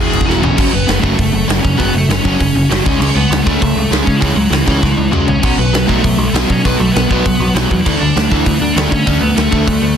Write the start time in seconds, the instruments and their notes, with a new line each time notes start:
Already playing: overdriven electric guitar E2, lead electric guitar G#4 G#5
0.00 overdriven electric guitar B2 E3
0.13 picked electric bass E1, crash
0.21 kick
0.27 picked electric bass E1, overdriven electric guitar E2 B2 E3, lead electric guitar F#3 F#4, snare
0.42 overdriven electric guitar E2 B2 E3, lead electric guitar C#4 C#5, floor tom
0.56 picked electric bass F#1, overdriven electric guitar F#2 C#3 F#3, lead electric guitar C#4 C#5, kick, crash
0.72 picked electric bass F#1, overdriven electric guitar F#2 C#3, lead electric guitar B3 B4
0.87 picked electric bass F#1, overdriven electric guitar F#2 C#3, snare, open hi-hat
0.99 overdriven electric guitar F#2 C#3 F#3, lead electric guitar A3 A4
1.03 picked electric bass F#1, kick
1.17 picked electric bass F#1, overdriven electric guitar F#2 C#3, kick, open hi-hat
1.32 picked electric bass F#1, overdriven electric guitar F#2 C#3
1.48 picked electric bass F#1, overdriven electric guitar F#2 C#3 F#3, snare, open hi-hat
1.60 overdriven electric guitar F#2 C#3, lead electric guitar C#4 C#5
1.65 picked electric bass F#2, kick
1.77 picked electric bass F#1, overdriven electric guitar F#2 C#3 F#3, lead electric guitar B3 B4, kick, open hi-hat
1.93 picked electric bass F#1, overdriven electric guitar F#2 C#3, lead electric guitar A3
1.98 lead electric guitar A4
2.09 picked electric bass F#1, overdriven electric guitar F#2 C#3, lead electric guitar C#4 C#5, snare, open hi-hat
2.23 picked electric bass F#1, overdriven electric guitar F#2 C#3 F#3, lead electric guitar C#4 C#5, kick
2.40 picked electric bass F#1, overdriven electric guitar F#2 C#3, kick, open hi-hat
2.55 picked electric bass F#1, overdriven electric guitar F#2 C#3
2.69 picked electric bass F#1, overdriven electric guitar F#2 C#3 F#3, lead electric guitar F#3 F#4, snare, open hi-hat
2.84 picked electric bass C#2, overdriven electric guitar C#3 G#3 C#4, lead electric guitar C#4 C#5, kick
2.99 picked electric bass C#2, overdriven electric guitar C#3 G#3 C#4, lead electric guitar C#4 C#5, crash
3.15 picked electric bass C#2, overdriven electric guitar C#3 G#3, lead electric guitar B3 B4
3.30 picked electric bass C#2, overdriven electric guitar C#3 G#3, snare, open hi-hat
3.42 overdriven electric guitar C#3, lead electric guitar A3 A4
3.46 picked electric bass C#2, overdriven electric guitar G#3 C#4, kick
3.62 picked electric bass C#2, overdriven electric guitar C#3 G#3, kick, open hi-hat
3.75 picked electric bass C#2, overdriven electric guitar C#3 G#3
3.91 picked electric bass C#2, overdriven electric guitar C#3 G#3 C#4, snare, open hi-hat
4.03 overdriven electric guitar C#3 G#3, lead electric guitar C#4 C#5
4.07 picked electric bass C#3, kick
4.17 lead electric guitar E3 E4
4.21 picked electric bass C#2, overdriven electric guitar C#3 G#3 C#4, kick, open hi-hat
4.34 picked electric bass C#2, overdriven electric guitar C#3 G#3, lead electric guitar F#3 F#4
4.50 picked electric bass C#2, overdriven electric guitar C#3 G#3, lead electric guitar E3 E4, snare, open hi-hat
4.65 picked electric bass C#2, overdriven electric guitar C#3 G#3 C#4, lead electric guitar E3 E4, kick
4.81 picked electric bass C#2, overdriven electric guitar C#3 G#3, kick, snare
4.97 picked electric bass C#2, overdriven electric guitar C#3 G#3
5.11 picked electric bass C#2, overdriven electric guitar C#3 G#3 C#4, lead electric guitar F#4, mid tom
5.15 lead electric guitar F#3
5.25 picked electric bass C#3, overdriven electric guitar C#3 G#3, lead electric guitar C#4 C#5, floor tom
5.40 overdriven electric guitar B2 F#3 B3, lead electric guitar C#4 C#5, kick, crash
5.44 picked electric bass B1
5.56 picked electric bass B1, overdriven electric guitar B2 F#3, lead electric guitar B3 B4
5.73 picked electric bass B1, overdriven electric guitar B2 F#3, snare, open hi-hat
5.86 picked electric bass B1, overdriven electric guitar B2 F#3 B3, lead electric guitar A3, kick
5.90 lead electric guitar A4
6.03 picked electric bass B1, overdriven electric guitar B2 F#3, kick, open hi-hat
6.18 picked electric bass B1, overdriven electric guitar B2 F#3
6.33 picked electric bass B1, overdriven electric guitar B2 F#3 B3, snare, open hi-hat
6.49 overdriven electric guitar B2 F#3, picked electric bass B2, lead electric guitar C#4 C#5, kick
6.62 picked electric bass B1, overdriven electric guitar B2 F#3 B3, lead electric guitar B3 B4, kick, open hi-hat
6.77 picked electric bass B1, overdriven electric guitar B2 F#3, lead electric guitar A3 A4
6.92 lead electric guitar B3 B4
6.96 picked electric bass B1, overdriven electric guitar B2 F#3, snare, open hi-hat
7.08 picked electric bass B1, overdriven electric guitar B2 F#3 B3, lead electric guitar B3 B4, kick
7.26 picked electric bass B1, overdriven electric guitar B2 F#3, kick, open hi-hat
7.40 picked electric bass B1, overdriven electric guitar B2 F#3
7.54 picked electric bass B1, overdriven electric guitar B2 F#3 B3, lead electric guitar F#3 F#4, snare, open hi-hat
7.69 picked electric bass E2, overdriven electric guitar B2 F#3, lead electric guitar F#3 F#4, kick
7.82 overdriven electric guitar D3, lead electric guitar E3 E4
7.86 picked electric bass D2, overdriven electric guitar A3 D4, kick, crash
7.97 lead electric guitar D4 D5
8.01 picked electric bass D2, overdriven electric guitar D3 A3
8.16 picked electric bass D2, overdriven electric guitar D3 A3, snare, open hi-hat
8.30 picked electric bass D2, overdriven electric guitar D3 A3 D4, lead electric guitar E3 E4, kick
8.46 picked electric bass D2, overdriven electric guitar D3 A3, kick, open hi-hat
8.60 picked electric bass D2, overdriven electric guitar D3 A3, lead electric guitar D4 D5
8.73 picked electric bass D2, overdriven electric guitar D3 A3, lead electric guitar A3 A4, open hi-hat
8.78 overdriven electric guitar D4, snare
8.88 overdriven electric guitar D3, picked electric bass D3, lead electric guitar C#4 C#5
8.92 overdriven electric guitar A3, kick
9.06 picked electric bass D2, overdriven electric guitar D3 A3 D4, kick, open hi-hat
9.19 picked electric bass D2, overdriven electric guitar D3 A3, lead electric guitar B3 B4
9.35 picked electric bass D2, overdriven electric guitar D3 A3, lead electric guitar A3 A4, snare, open hi-hat
9.51 picked electric bass D2, overdriven electric guitar D3 A3 D4, kick
9.67 picked electric bass D2, overdriven electric guitar D3 A3, kick, open hi-hat
9.82 picked electric bass D2, overdriven electric guitar D3 A3